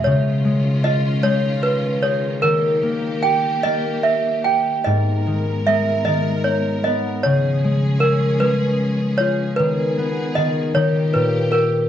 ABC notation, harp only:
X:1
M:6/8
L:1/8
Q:3/8=51
K:G#m
V:1 name="Harp" clef=bass
C, G, ^E G,2 G | D, A, =G A,2 G | G,, D, G, D,2 B, | C, G, C G,2 ^E |
D, B, D, D, A,, =G |]